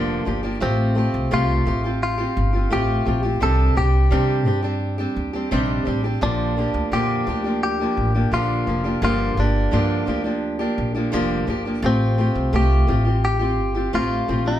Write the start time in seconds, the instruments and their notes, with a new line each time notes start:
Already playing: upright bass F1, steel-string acoustic guitar G2 D3 F3 A#3 D4 G4, clean electric guitar D4
0.25 upright bass G1, steel-string acoustic guitar F3 A#3 D4 G4
0.43 steel-string acoustic guitar F3 A#3 D4 G4
0.60 upright bass A1, steel-string acoustic guitar A3 C4 F4 G4
0.95 steel-string acoustic guitar A3 C4 F4 G4
1.14 upright bass C2
1.31 upright bass C2, steel-string acoustic guitar A3 C4 F4 G4
1.65 upright bass A1, steel-string acoustic guitar A3 C4 F4 G4
1.84 steel-string acoustic guitar C4 F4 G4
2.03 clean electric guitar F4
2.18 steel-string acoustic guitar C4 F4 G4
2.37 upright bass G1
2.53 steel-string acoustic guitar C4 F4 G4
2.70 upright bass A1, steel-string acoustic guitar A3 C4 F4 G4
3.05 upright bass A#1, steel-string acoustic guitar A3 C4 F4 G4
3.23 steel-string acoustic guitar C4 F4 G4
3.40 upright bass C2, steel-string acoustic guitar C3 D#3 G3 C4 D4 G4, clean electric guitar A4
3.75 upright bass C2, steel-string acoustic guitar G3 C4 D4 G4
4.10 steel-string acoustic guitar C3 D#3 G3 C4 D4 G4, upright bass C3
4.45 upright bass G2, steel-string acoustic guitar G3 C4 D4 G4
4.62 steel-string acoustic guitar G3 C4 D4 G4
4.98 steel-string acoustic guitar G3 C4 D4 G4
5.16 upright bass D#2
5.33 steel-string acoustic guitar G3 C4 D4 G4
5.51 upright bass A#1, steel-string acoustic guitar C3 D#3 G3 C4 D4 G4
5.85 upright bass A1, steel-string acoustic guitar G3 C4 D4 G4
6.04 steel-string acoustic guitar G3 C4 D4 G4
6.21 upright bass A#1, steel-string acoustic guitar A#2 D3 F3 A#3 D4 G4
6.57 steel-string acoustic guitar F3 A#3 D4 G4
6.74 upright bass D2
6.92 upright bass F2, steel-string acoustic guitar A#2 D3 F3 A#3 D4 G4
7.27 upright bass D2, steel-string acoustic guitar F3 A#3 D4 G4
7.44 steel-string acoustic guitar F3 A#3 D4 G4
7.63 clean electric guitar G4
7.80 steel-string acoustic guitar F3 A#3 D4 G4
7.97 upright bass A1
8.15 steel-string acoustic guitar F3 A#3 D4 G4
8.32 upright bass A#1, steel-string acoustic guitar A#2 D3 F3 A#3 D4 G4, clean electric guitar F4
8.67 upright bass F1, steel-string acoustic guitar F3 A#3 D4 G4
8.84 steel-string acoustic guitar F3 A#3 D4 G4
9.02 upright bass G1, steel-string acoustic guitar G2 D3 F3 A#3 D4 G4, clean electric guitar F4
9.37 upright bass G1, steel-string acoustic guitar F3 A#3 D4 G4
9.71 steel-string acoustic guitar G2 D3 F3 A#3 D4 G4, upright bass G2
10.06 upright bass D2, steel-string acoustic guitar F3 A#3 D4 G4
10.24 steel-string acoustic guitar F3 A#3 D4 G4
10.59 steel-string acoustic guitar F3 A#3 D4 G4
10.78 upright bass A#1
10.95 steel-string acoustic guitar F3 A#3 D4 G4
11.12 upright bass F1, steel-string acoustic guitar G2 D3 F3 A#3 D4 G4
11.47 upright bass G1, steel-string acoustic guitar F3 A#3 D4 G4
11.65 steel-string acoustic guitar F3 A#3 D4 G4
11.82 upright bass A1, steel-string acoustic guitar A3 C4 F4 G4
12.18 steel-string acoustic guitar A3 C4 F4 G4
12.35 upright bass C2
12.53 upright bass C2, steel-string acoustic guitar A3 C4 F4 G4
12.87 upright bass A1, steel-string acoustic guitar A3 C4 F4 G4
13.05 steel-string acoustic guitar C4 F4 G4
13.25 clean electric guitar G4
13.39 steel-string acoustic guitar C4 F4 G4
13.59 upright bass G1
13.75 steel-string acoustic guitar C4 F4 G4
13.93 upright bass A1, steel-string acoustic guitar A3 C4 F4 G4
14.28 upright bass A#1, steel-string acoustic guitar A3 C4 F4 G4
14.45 steel-string acoustic guitar C4 F4 G4, clean electric guitar D#4